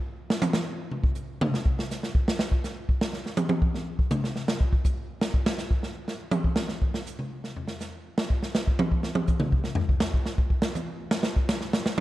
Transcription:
0.30 snare
0.41 hi-hat pedal, high tom
0.53 snare
0.91 mid tom
1.04 kick
1.15 hi-hat pedal
1.41 mid tom
1.54 snare
1.66 kick
1.79 snare
1.91 snare, hi-hat pedal
2.03 snare
2.15 kick
2.28 snare
2.39 snare
2.52 kick
2.64 snare, hi-hat pedal
2.89 kick
3.01 snare
3.13 snare
3.26 snare
3.37 hi-hat pedal, high tom
3.49 high tom
3.62 kick
3.74 snare
3.99 kick
4.11 hi-hat pedal, mid tom
4.24 snare
4.36 snare
4.48 snare
4.61 kick
4.73 kick
4.85 kick, hi-hat pedal
5.21 snare
5.34 kick
5.46 snare
5.58 snare, hi-hat pedal
5.71 kick
5.83 snare
6.08 snare
6.31 hi-hat pedal, high tom
6.44 kick
6.56 snare
6.68 snare
6.82 kick
6.94 snare
7.06 hi-hat pedal
7.19 mid tom
7.44 snare
7.56 floor tom
7.68 snare
7.80 snare, hi-hat pedal
8.18 snare
8.30 kick
8.43 snare
8.54 snare, hi-hat pedal
8.67 kick
8.79 high tom
8.92 kick
9.03 snare
9.15 high tom
9.27 kick, hi-hat pedal
9.40 mid tom
9.52 kick
9.64 snare
9.75 floor tom
9.89 kick
10.00 snare, hi-hat pedal
10.14 kick
10.26 snare
10.38 kick
10.50 kick
10.62 snare
10.75 hi-hat pedal, high tom
11.11 snare
11.23 snare
11.36 kick
11.49 snare, hi-hat pedal
11.61 snare
11.73 snare
11.86 snare

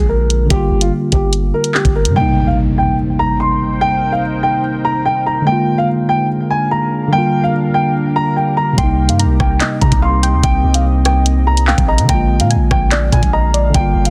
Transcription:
Already playing: D3 G#3 A#3 F4
0.00 A#1
0.09 A#4
0.30 closed hi-hat
0.45 D3 G3
0.50 G1 A#3 G4, kick, closed hi-hat
0.56 F4
0.71 G1
0.81 F4, closed hi-hat
1.12 G1 G4, kick, closed hi-hat
1.33 closed hi-hat
1.54 A#4
1.64 closed hi-hat
1.74 G4, clap
1.85 G1, kick, closed hi-hat
1.96 A#4
2.05 G2, closed hi-hat
2.11 C3 G3
2.16 A#3 D#4 A#4 C5 G5, impact
2.21 D#4
2.47 F5
2.78 G5
3.19 A#5
3.40 C6
3.81 G5
4.12 F5
4.43 G5
4.85 A#5
5.05 G5
5.26 A#5
5.42 D3 G#3
5.47 A#3 D4 G#4 A#4 F5 G5
5.52 F4
5.78 F5
6.09 G5
6.50 G#5
6.71 A#5
7.07 D3 G3
7.12 A#3 G4 G5
7.18 F4
7.44 F5
7.74 G5
8.16 A#5
8.36 G5
8.57 A#5
8.73 C3 G3
8.78 C2 A#3 C4 D#5 G5 C6, kick, closed hi-hat
8.83 D#4
9.09 G2 F5, closed hi-hat
9.19 A#5, closed hi-hat
9.25 C2
9.40 C2 G5, kick, cross-stick
9.60 D#5, clap, closed hi-hat
9.81 C3 A#5, kick, closed hi-hat
9.92 C2, kick, closed hi-hat
10.02 F5 C6
10.23 G5, closed hi-hat
10.33 D#2
10.43 C2 G5, kick, closed hi-hat
10.64 C2
10.74 F5, closed hi-hat
11.05 G5, cross-stick, closed hi-hat
11.26 closed hi-hat
11.47 A#5
11.57 closed hi-hat
11.67 F5 G5, clap
11.78 A#1, kick, closed hi-hat
11.88 D#5 A#5
11.98 C3, closed hi-hat
12.04 D3 G#3
12.09 A#1 A#3 D4 G#4 F5 G5 A#5, kick, closed hi-hat
12.14 F4
12.40 A#2 F5, closed hi-hat
12.50 G#5, closed hi-hat
12.56 A#1
12.71 A#1 G5, kick, cross-stick
12.91 D5, clap, closed hi-hat
13.12 A#2 G#5, kick, closed hi-hat
13.23 A#1, kick, closed hi-hat
13.33 D#5 A#5
13.54 D5, closed hi-hat
13.69 D3 G3
13.74 G1 A#3 G4 G5, kick, closed hi-hat
13.80 F4
13.95 G1
14.05 F5, closed hi-hat

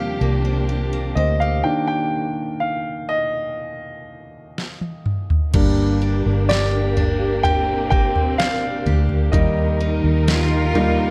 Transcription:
Already playing: D#2 C3 D#3 F3 G3 A#3 C4 D4 G4 C5 F5 G5
0.21 C2 A#3
0.45 C5
0.69 G4
0.93 A#3
1.15 D2 C5 D#5
1.40 G4 F5
1.64 D#3 A#3 D4 G5
1.88 G5
2.60 F5
3.09 D#5
4.58 snare
4.81 high tom
5.06 mid tom
5.30 floor tom
5.54 G1 G2 G3 A#3 D4 G4, kick, floor tom, crash
6.02 D4
6.26 G1
6.49 G4 D5, snare
6.97 D4, floor tom
7.43 C4 G4 G5, floor tom
7.90 A#3 G5, kick
8.16 floor tom
8.38 D4 F5, snare
8.86 D2 G4, floor tom
9.09 floor tom
9.32 D#2 D#3 G3 A#3 D#4 A#4 D#5, kick, floor tom
9.80 D#4
10.04 D#2
10.27 F4 G4, snare
10.74 G3 A#3 D#4, floor tom

